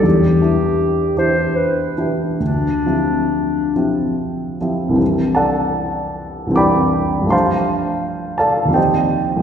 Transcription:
<<
  \new Staff \with { instrumentName = "Clarinet" } { \time 3/4 \key c \major \tempo 4 = 78 g'4. c''8 b'8 r8 | d'2 r4 | r2. | r2. | }
  \new Staff \with { instrumentName = "Grand piano" } { \time 3/4 \key c \major << { e,8 <e d' e' g'>4 <e d' e' g'>4 <e d' e' g'>8 | d,8 <f c' e' g'>4 <f c' e' g'>4 <f c' e' g'>8 | r8 <a' d'' fis'' a''>4. <d'' g'' b'' d'''>4 | <c'' f'' a'' c'''>4. <a' d'' f'' a''>8 <g' c'' ees'' g''>4 | } \\ { r2. | r2. | <c, e c' d' g'>2 <c, e c' d' g'>4 | <g, f a d' g'>2 <ees, f c' ees'>4 | } >> }
>>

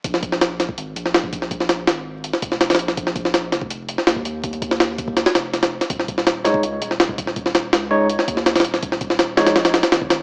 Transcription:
<<
  \new Staff \with { instrumentName = "Tine electric piano" } { \time 4/4 \key bes \minor \tempo 4 = 164 r1 | r1 | r1 | r1 |
r4. <aes ees' des''>8 r2 | r4. <aes ees' des''>8 r2 | r4. <aes ees' des''>8 r2 | }
  \new Staff \with { instrumentName = "Sub bass" } { \clef bass \time 4/4 \key bes \minor bes,,4.~ bes,,16 r16 aes,,8 bes,,4.~ | bes,,4 aes,,4~ aes,,16 r16 f,,8. bes,,8. | bes,,4. f,,4~ f,,16 r16 ees,4~ | ees,2~ ees,16 r16 f,,4~ f,,16 r16 |
ees,,4.~ ees,,16 r16 des,8 ees,,4.~ | ees,,4 des,4~ des,16 r16 ees,8. ees,,8. | ees,,4. bes,,4~ bes,,16 r16 aes,,4 | }
  \new DrumStaff \with { instrumentName = "Drums" } \drummode { \time 4/4 <hh bd>16 sn16 <hh bd>16 sn16 <hh sn>8 <hh sn>16 bd16 hh8 hh16 sn16 <hh sn>16 bd16 <hh bd>16 sn16 | <hh bd>16 sn16 <hh sn>8 <hh sn>4 hh16 sn16 <hh bd>16 sn16 <hh sn>16 <hh sn>32 <hh sn>32 hh16 sn16 | <hh bd>16 sn16 <hh bd>16 sn16 <hh sn>8 <hh sn>16 bd16 hh8 hh16 sn16 <hh sn>16 bd16 hh8 | <hh bd>16 hh16 <hh bd>16 sn16 <hh sn>8 <hh bd>16 bd16 <hh sn>16 <hh sn>16 <hh sn>8 <hh sn>16 <hh sn>8 <hh sn>16 |
<hh bd>16 sn16 <hh bd>16 sn16 <hh sn>8 <hh sn>16 bd16 hh8 hh16 sn16 <hh sn>16 bd16 <hh bd>16 sn16 | <hh bd>16 sn16 <hh sn>8 <hh sn>4 hh16 sn16 <hh bd>16 sn16 <hh sn>16 <hh sn>32 <hh sn>32 hh16 sn16 | <hh bd>16 sn16 <hh bd>16 sn16 <hh sn>8 <hh sn>16 <hh sn>16 <hh sn>16 <hh sn>16 <hh sn>16 <hh sn>16 <hh sn>16 bd16 <hh sn>8 | }
>>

